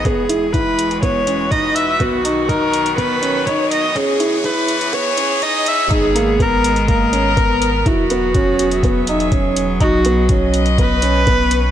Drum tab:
HH |x-x-x-xxx-x-x-x-|x-x-x-xxx-x-x-x-|x-x-x-xxx-x-x-x-|x-x-x-xxx-x-x-x-|
BD |o---o---o---o---|o---o---o---o---|o---o---o---o---|o---o---o---o---|

HH |x-x-x-xxx-xxx-x-|x-x-x-xxx-x-x-x-|
BD |o---o---o---o---|o---o---o---o---|